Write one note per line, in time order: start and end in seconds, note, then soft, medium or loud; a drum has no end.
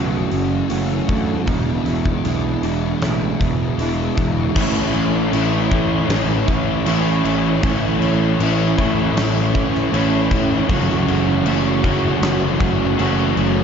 0.00 0.23 B1 medium
0.00 0.68 F#2 medium
0.00 0.69 F#2 loud
0.00 0.33 C#3 medium
0.00 0.70 C#3 medium
0.00 0.34 E3 medium
0.00 0.29 F#3 loud
0.00 0.32 A3 loud
0.00 0.31 C#4 loud
0.00 0.29 F#4 loud
0.30 0.61 F#1 medium
0.30 0.70 C#3 medium
0.30 0.68 E3 medium
0.30 0.71 F#3 medium
0.30 0.69 A3 medium
0.30 0.70 C#4 medium
0.30 0.71 F#4 medium
0.30 open hi-hat medium
0.69 1.00 F#1 medium
0.69 1.45 F#2 medium
0.69 1.10 C#3 medium
0.69 1.11 E3 medium
0.69 1.07 F#3 medium
0.69 1.09 A3 medium
0.69 1.08 C#4 medium
0.69 1.07 F#4 medium
0.69 open hi-hat medium
1.08 1.38 D2 medium
1.08 1.47 C#3 medium
1.08 1.47 E3 medium
1.08 1.45 F#3 medium
1.08 1.46 A3 medium
1.08 1.45 C#4 medium
1.08 1.45 F#4 medium
1.08 kick medium
1.08 open hi-hat medium
1.46 1.77 E1 medium
1.46 2.24 E2 medium
1.46 2.23 E2 medium
1.46 2.24 B2 medium
1.46 1.88 B2 loud
1.46 1.88 E3 medium
1.46 1.86 G#3 medium
1.46 1.85 D4 loud
1.46 1.84 E4 loud
1.46 kick loud
1.46 open hi-hat medium
1.50 1.85 E3 loud
1.85 2.15 E1 medium
1.85 2.27 E3 medium
1.85 2.22 E3 medium
1.85 2.23 G#3 medium
1.85 2.25 D4 medium
1.85 2.26 E4 medium
1.85 open hi-hat medium
1.89 2.26 B2 medium
2.06 kick medium
2.24 2.54 B1 medium
2.24 3.00 E2 medium
2.24 2.65 B2 medium
2.24 2.64 E3 medium
2.24 2.63 G#3 medium
2.24 2.62 D4 medium
2.24 2.61 E4 medium
2.24 open hi-hat medium
2.28 2.61 E3 medium
2.62 2.93 E1 medium
2.62 3.03 E3 medium
2.62 3.02 E3 medium
2.62 3.02 G#3 medium
2.62 3.03 D4 medium
2.62 3.04 E4 medium
2.62 open hi-hat medium
2.66 3.02 B2 medium
3.01 3.31 A1 medium
3.01 3.78 E2 loud
3.01 3.77 E2 medium
3.01 3.79 B2 medium
3.01 3.42 B2 medium
3.01 3.42 E3 medium
3.01 3.39 E3 medium
3.01 3.41 G#3 loud
3.01 3.40 D4 medium
3.01 snare loud
3.01 open hi-hat medium
3.05 3.38 E4 loud
3.39 3.70 E1 medium
3.39 3.80 E3 medium
3.39 3.76 E3 medium
3.39 3.77 G#3 medium
3.39 3.79 D4 medium
3.39 3.80 E4 medium
3.39 kick medium
3.39 open hi-hat medium
3.44 3.79 B2 medium
3.77 4.08 E1 medium
3.77 4.53 E2 medium
3.77 4.19 B2 medium
3.77 4.18 E3 medium
3.77 4.17 G#3 medium
3.77 4.16 D4 medium
3.77 4.14 E4 medium
3.77 open hi-hat medium
3.82 4.15 E3 medium
4.15 4.47 E1 medium
4.15 4.53 E3 medium
4.15 4.54 E3 medium
4.15 4.54 G#3 medium
4.15 4.54 D4 medium
4.15 4.53 E4 medium
4.15 kick medium
4.15 open hi-hat medium
4.20 4.54 B2 medium
4.54 4.90 A1 loud
4.54 7.62 A2 loud
4.54 5.32 A2 medium
4.54 5.30 E3 medium
4.54 4.96 E3 loud
4.54 4.93 A3 loud
4.54 4.94 C#4 medium
4.54 4.92 E4 loud
4.54 kick loud
4.54 crash loud
4.54 crash medium
4.92 5.28 A1 medium
4.92 5.35 A3 medium
4.92 5.33 C#4 medium
4.92 5.34 E4 medium
4.92 crash medium
4.97 5.33 E3 medium
5.31 6.00 A1 medium
5.31 6.84 A2 medium
5.31 6.85 E3 medium
5.31 6.51 E3 medium
5.31 5.70 C#4 medium
5.31 5.68 E4 medium
5.31 crash medium
5.35 6.47 A3 medium
5.69 6.87 E3 medium
5.69 6.87 A3 medium
5.69 6.47 C#4 medium
5.69 6.46 E4 medium
5.69 kick medium
5.69 crash medium
5.73 6.85 A2 medium
6.09 6.43 A1 medium
6.09 snare loud
6.09 crash medium
6.46 6.82 A1 medium
6.46 6.89 A3 medium
6.46 6.88 C#4 medium
6.46 6.89 E4 medium
6.46 kick medium
6.46 crash medium
6.51 6.87 E3 medium
6.86 7.20 A1 medium
6.86 7.61 A2 medium
6.86 7.63 E3 medium
6.86 7.27 E3 medium
6.86 7.24 A3 medium
6.86 7.64 C#4 medium
6.86 7.65 E4 medium
6.86 crash medium
7.24 7.58 A1 loud
7.24 7.64 E3 medium
7.24 7.65 A3 medium
7.24 crash medium
7.62 7.97 A1 loud
7.62 8.39 A2 medium
7.62 8.37 A2 loud
7.62 8.39 E3 loud
7.62 8.04 E3 loud
7.62 8.00 A3 loud
7.62 8.03 C#4 loud
7.62 8.00 E4 medium
7.62 kick loud
7.62 crash medium
8.00 8.34 A1 medium
8.00 8.40 E3 medium
8.00 8.42 A3 medium
8.00 8.41 C#4 medium
8.00 8.43 E4 medium
8.00 crash medium
8.39 8.73 A1 loud
8.39 9.90 A2 medium
8.39 9.93 E3 medium
8.39 9.55 E3 medium
8.39 9.53 A3 medium
8.39 8.79 C#4 medium
8.39 crash medium
8.43 8.77 E4 medium
8.78 9.12 A1 medium
8.78 9.92 A2 medium
8.78 9.91 E3 medium
8.78 9.93 A3 medium
8.78 9.55 C#4 medium
8.78 9.53 E4 medium
8.78 kick medium
8.78 crash medium
9.16 9.83 A1 loud
9.16 snare loud
9.16 crash loud
9.53 9.92 E3 medium
9.53 9.94 A3 medium
9.53 9.94 C#4 medium
9.53 9.95 E4 medium
9.53 kick medium
9.53 crash medium
9.75 snare soft
9.91 10.59 A1 medium
9.91 10.66 A2 medium
9.91 10.67 E3 medium
9.91 10.32 E3 medium
9.91 10.30 A3 medium
9.91 crash medium
9.95 10.68 C#4 medium
9.95 10.69 E4 medium
10.30 10.68 E3 medium
10.30 13.64 A3 medium
10.30 kick medium
10.30 crash medium
10.68 11.03 F#1 loud
10.68 11.44 F#2 medium
10.68 11.45 F#2 medium
10.68 11.46 C#3 loud
10.68 11.09 C#3 loud
10.68 11.10 E3 medium
10.68 11.06 F#3 loud
10.68 11.09 A3 loud
10.68 11.07 C#4 medium
10.68 11.07 F#4 loud
10.68 kick loud
10.68 crash medium
11.07 11.41 F#1 medium
11.07 11.45 C#3 medium
11.07 11.48 F#3 medium
11.07 11.46 A3 medium
11.07 11.46 C#4 medium
11.07 11.48 F#4 medium
11.07 crash medium
11.11 11.44 E3 medium
11.45 12.12 F#1 medium
11.45 12.96 F#2 medium
11.45 12.61 C#3 medium
11.45 11.85 E3 medium
11.45 12.58 F#3 medium
11.45 11.85 A3 medium
11.45 11.83 C#4 medium
11.45 11.82 F#4 medium
11.45 crash medium
11.83 12.62 E3 medium
11.83 12.97 F#3 medium
11.83 12.61 A3 medium
11.83 12.59 C#4 medium
11.83 12.58 F#4 medium
11.83 kick medium
11.83 crash medium
12.22 12.55 F#1 medium
12.22 snare loud
12.22 crash medium
12.59 12.94 F#1 medium
12.59 12.98 C#3 medium
12.59 12.96 E3 medium
12.59 12.99 F#3 medium
12.59 12.98 A3 medium
12.59 12.99 C#4 medium
12.59 13.00 F#4 medium
12.59 kick medium
12.59 crash medium
12.97 13.32 F#1 medium
12.97 13.64 F#2 medium
12.97 13.38 C#3 medium
12.97 13.64 E3 medium
12.97 13.34 F#3 medium
12.97 13.64 A3 medium
12.97 13.64 C#4 medium
12.97 crash medium
13.01 13.64 F#4 medium
13.35 13.64 F#1 medium
13.35 13.64 C#3 medium
13.35 13.64 F#3 medium
13.35 crash medium